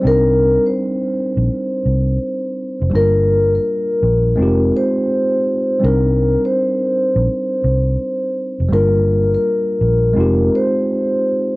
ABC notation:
X:1
M:4/4
L:1/16
Q:"Swing 16ths" 1/4=83
K:Cm
V:1 name="Vibraphone"
B3 c12- c | B3 B6- B c6 | B3 c12- c | B3 B6- B c6 |]
V:2 name="Tine electric piano"
[G,CDEB]16 | [G,B,DFB]8 [A,CEFG]8 | [G,CDEB]16 | [G,B,DFB]8 [A,CEFG]8 |]
V:3 name="Fingered electric bass" clef=bass
C,,3 z4 B,,, z2 C,,2 z3 F,,, | G,,,4 z2 B,,,2 F,,,2 z6 | C,,3 z4 B,,, z2 C,,2 z3 F,,, | G,,,4 z2 B,,,2 F,,,2 z6 |]